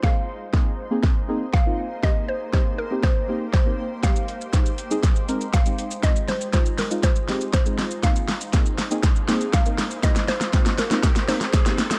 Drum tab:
HH |----------------|----------------|x-x-x-x-x-x-x-x-|x-o-x-o-x-o-x-o-|
SH |----------------|----------------|xxxxxxxxxxxxxxxx|xxxxxxxxxxxxxxxx|
SD |o---o---o---o---|o---o---o---o---|o---o---o---o---|o-o-o-o-o-o-o-o-|
BD |o---o---o---o---|o---o---o---o---|o---o---o---o---|o---o---o---o---|

HH |x-o-x-o-x-o-x-o-|x-o-x-o-x-o-x-o-|
SH |xxxxxxxxxxxxxxxx|xxxxxxxxxxxxxxxx|
SD |o-o-o-o-o-o-o-o-|oooooooooooooooo|
BD |o---o---o---o---|o---o---o---o---|